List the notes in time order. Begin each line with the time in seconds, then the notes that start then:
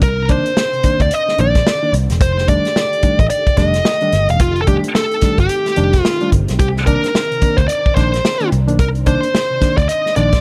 Already playing: D3 D#3 C4
0.01 C2 C3 A#4 C5, kick, closed hi-hat
0.29 D#3 A#3 D4 C5, kick, closed hi-hat
0.46 A#3 D4, closed hi-hat
0.57 A#3 D4, snare
0.73 C3, closed hi-hat
0.83 D#3 A#3 D4, muted picked electric bass stroke, kick, closed hi-hat
1.00 D2 D5, kick, closed hi-hat
1.11 D#5, closed hi-hat
1.28 snare
1.38 A#1 D#3 A#3 D4 D5, closed hi-hat
1.55 kick, snare, closed hi-hat
1.67 snare
1.82 D#3 A#3 D4
1.93 C2, closed hi-hat
2.10 E1 C3, snare, closed hi-hat
2.20 F1 A3 G4 C5, kick, closed hi-hat
2.38 snare
2.48 D#3 G3 A3 D4 D5, kick, closed hi-hat
2.65 A3 D4, snare, closed hi-hat
2.76 A3 D4, snare
2.93 closed hi-hat
3.03 D#3 G3 A3 D4, muted picked electric bass stroke, kick, closed hi-hat
3.19 A1 D#5, kick, closed hi-hat
3.30 D5, closed hi-hat
3.46 kick, closed hi-hat
3.57 F1 D#3 G3 A3 D4 D#5, kick, snare, closed hi-hat
3.74 snare, closed hi-hat
3.85 snare
4.01 D#3 G3 A3 D4, closed hi-hat
4.12 G1, snare, closed hi-hat
4.29 E1 F5, closed hi-hat
4.39 F1 C4 F4, kick, closed hi-hat
4.56 closed hi-hat
4.62 A4
4.67 D#3 G3 A3 D4 G4, kick, closed hi-hat
4.84 A3 D4, closed hi-hat
4.95 A3 D4 A4, snare
5.11 closed hi-hat
5.21 D#3 G3 A3 D4, muted picked electric bass stroke, kick, snare, closed hi-hat
5.38 G1 G4, kick, closed hi-hat
5.49 closed hi-hat
5.66 snare, closed hi-hat
5.76 F1 D#3 G3 A3 D4, closed hi-hat
5.93 kick, snare, closed hi-hat
6.03 F4, snare
6.20 D#3 G3 A3 D4, closed hi-hat
6.32 G1, kick, closed hi-hat
6.48 B1, snare, closed hi-hat
6.59 C2 C3 D4 G4 A#4, kick, closed hi-hat
6.77 snare
6.86 D#3 A#3 D4 A#4, kick, closed hi-hat
7.04 A#3 D4, snare, closed hi-hat
7.14 A#3 D4, snare
7.31 C3, closed hi-hat
7.42 D#3 A#3 D4, muted picked electric bass stroke, kick, closed hi-hat
7.57 D2 C5, kick, closed hi-hat
7.68 D5, closed hi-hat
7.86 kick
7.96 A#1 D#3 A#3 D4 C5, kick, snare, closed hi-hat
8.13 snare, closed hi-hat
8.25 snare
8.40 D#3 A#3 D4, closed hi-hat
8.51 C2 C3, closed hi-hat
8.67 B1 D#3 A#3 D4, closed hi-hat
8.79 C2 A#4 C5, kick, closed hi-hat
8.95 closed hi-hat
9.06 D#3 A#3 D4 C5, kick, closed hi-hat
9.22 A#3 D4, closed hi-hat
9.34 A#3 D4, snare
9.50 C3
9.61 D#3 A#3 D4, muted picked electric bass stroke, kick, snare, closed hi-hat
9.77 D2 D5, kick, closed hi-hat
9.89 D#5, closed hi-hat
10.06 snare
10.16 A#1 D#3 A#3 D4 D5, closed hi-hat
10.32 kick, snare, closed hi-hat